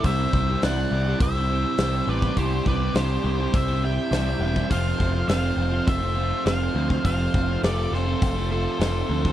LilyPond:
<<
  \new Staff \with { instrumentName = "Lead electric guitar" } { \time 4/4 \key c \lydian \tempo 4 = 103 e''4 fis''4 e''4. d''8 | c''8 d''8 c''4 e''8 g''4. | f''4 f''4 e''4 f''4 | f''4 d''8 c''4 c''4. | }
  \new Staff \with { instrumentName = "Lead electric guitar" } { \time 4/4 \key c \lydian c''4 d''4 c''4. b'8 | g'8 b'8 g'4 c''8 e''4. | c''4 c''4 c''4 c''4 | c''4 a'8 a'4 a'4. | }
  \new Staff \with { instrumentName = "Tonewheel organ" } { \time 4/4 \key c \lydian <d' e' g' c''>1 | <d' e' g' c''>1 | <c' f' a' c''>1 | <c' f' a'>1 | }
  \new Staff \with { instrumentName = "Overdriven electric guitar" } { \time 4/4 \key c \lydian <c g c' e' g' c''>8 <c' e' g' c''>16 <c' e' g' c''>16 <c g c' e' g' c''>8 <c' e' g' c''>16 <c' e' g' c''>8 <c' e' g' c''>16 <c' e' g' c''>8 <c g c' e' g' c''>8 <c' e' g' c''>16 <c' e' g' c''>16 | <c g c' e' g' c''>8 <c' e' g' c''>16 <c' e' g' c''>16 <c g c' e' g' c''>8 <c' e' g' c''>16 <c' e' g' c''>8 <c' e' g' c''>16 <c' e' g' c''>8 <c g c' e' g' c''>8 <c' e' g' c''>16 <c' e' g' c''>16 | <f, c f a c' f'>8 <f a c' f'>16 <f a c' f'>16 <f, c f a c' f'>8 <f a c' f'>16 <f a c' f'>8 <f a c' f'>16 <f a c' f'>8 <f, c f a c' f'>8 <f a c' f'>16 <f a c' f'>16 | <f, c f a c' f'>8 <f a c' f'>16 <f a c' f'>16 <f, c f a c' f'>8 <f a c' f'>16 <f a c' f'>8 <f a c' f'>16 <f a c' f'>8 <f, c f a c' f'>8 <f a c' f'>16 <f a c' f'>16 | }
  \new Staff \with { instrumentName = "Picked electric bass" } { \clef bass \time 4/4 \key c \lydian c,8 c,8 c,8 c,8 c,4 c,8 a,,8 | c,8 c,8 c,8 c,8 c,4 c,8 e,,8 | f,,8 f,,8 f,,8 f,,8 f,,4 f,,8 d,8 | f,,8 f,,8 f,,8 f,,8 f,,4 f,,8 d,8 | }
  \new DrumStaff \with { instrumentName = "Drums" } \drummode { \time 4/4 <hho bd>8 bd8 <hho sn>4 <hho bd>4 <hho sn>8. bd16 | <hho bd>8 bd8 <hho sn>4 <hho bd>4 <hho sn>8. bd16 | <hho bd>8 bd8 <hho sn>4 <hho bd>4 <hho sn>8. bd16 | <hho bd>8 bd8 <hho sn>8 sn8 <hho bd>4 <hho sn>8. bd16 | }
>>